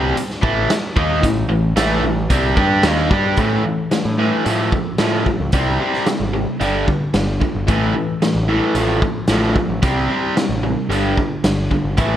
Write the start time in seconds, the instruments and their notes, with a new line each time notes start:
Already playing: picked electric bass C2, overdriven electric guitar C3 G3 C4
0.16 muted overdriven electric guitar stroke, closed hi-hat
0.30 snare
0.42 picked electric bass A1, overdriven electric guitar A2 E3 A3, kick
0.69 muted overdriven electric guitar stroke, muted picked electric bass stroke, snare, closed hi-hat
0.96 picked electric bass D#2, overdriven electric guitar D#3 A#3 D#4, kick
1.22 picked electric bass A1, overdriven electric guitar A2 E3, kick, closed hi-hat
1.48 picked electric bass A1, overdriven electric guitar A2 E3
1.76 picked electric bass A1, overdriven electric guitar A2 E3 A3, snare, closed hi-hat
2.03 picked electric bass A1, overdriven electric guitar A2 E3
2.30 picked electric bass C2, overdriven electric guitar C3 G3 C4, kick, closed hi-hat
2.56 picked electric bass G2, overdriven electric guitar G3 D4 G4, kick
2.83 picked electric bass D#2, overdriven electric guitar D#3 A#3 D#4, snare, closed hi-hat
3.11 picked electric bass G2, overdriven electric guitar G3 D4 G4, kick
3.37 picked electric bass A2, overdriven electric guitar A2 E3 A3, kick, closed hi-hat
3.64 overdriven electric guitar A2 E3
3.91 overdriven electric guitar A2 E3, snare, closed hi-hat
4.05 picked electric bass A2
4.18 overdriven electric guitar A2 E3 A3
4.45 overdriven electric guitar A2 F3 A3, picked electric bass A2, closed hi-hat
4.72 overdriven electric guitar A2 F3, kick
4.98 overdriven electric guitar A2 F3 A3, picked electric bass A2, snare, closed hi-hat
5.26 overdriven electric guitar A2 F3, kick
5.40 picked electric bass C#2
5.52 picked electric bass C2, overdriven electric guitar C3 G3 C4, kick, closed hi-hat
5.80 overdriven electric guitar C3 G3 C4
5.94 snare
6.06 overdriven electric guitar C3 G3, snare, closed hi-hat
6.20 picked electric bass G#1
6.34 overdriven electric guitar C3 G3
6.60 picked electric bass G1, overdriven electric guitar G2 D3 G3, closed hi-hat
6.87 overdriven electric guitar G2 D3, kick
7.14 picked electric bass G1, overdriven electric guitar G2 D3, snare, closed hi-hat
7.40 overdriven electric guitar G2 D3, kick
7.55 picked electric bass G1
7.67 picked electric bass A1, overdriven electric guitar A2 E3 A3, kick, closed hi-hat
7.94 overdriven electric guitar A2 E3
8.22 overdriven electric guitar A2 E3, snare, closed hi-hat
8.35 picked electric bass A1
8.48 overdriven electric guitar A2 E3 A3
8.75 picked electric bass A1, overdriven electric guitar A2 F3 A3, closed hi-hat
9.02 overdriven electric guitar A2 F3, kick
9.27 picked electric bass A1, overdriven electric guitar A2 F3 A3, snare, closed hi-hat
9.55 overdriven electric guitar A2 F3, kick
9.69 picked electric bass A1
9.82 picked electric bass C2, overdriven electric guitar C3 G3 C4, kick, closed hi-hat
10.09 overdriven electric guitar C3 G3 C4
10.36 overdriven electric guitar C3 G3, snare, closed hi-hat
10.49 picked electric bass A1
10.63 overdriven electric guitar C3 G3
10.89 picked electric bass G1, overdriven electric guitar G2 D3 G3, closed hi-hat
11.17 overdriven electric guitar G2 D3, kick
11.44 picked electric bass G1, overdriven electric guitar G2 D3, snare, closed hi-hat
11.71 overdriven electric guitar G2 D3, kick
11.84 picked electric bass G1
11.97 picked electric bass A1, overdriven electric guitar A2 E3 A3, kick, closed hi-hat